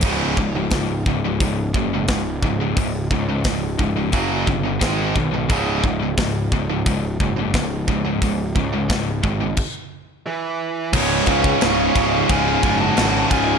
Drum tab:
CC |x---------------|----------------|----------------|--------x-------|
HH |o---o---o---o---|o---o---o---o---|o---o---o---o---|o---o-----------|
SD |----o-------o---|----o-------o---|----o-------o---|----o-----------|
BD |o-o-o-o-o-o-o-o-|o-o-o-o-o-o-o-o-|o-o-o-o-o-o-o-o-|o-o-o-o-o-------|

CC |x-x-x-x-x-x-x-x-|
HH |----------------|
SD |----o-------o---|
BD |o-oo--o-o-o---o-|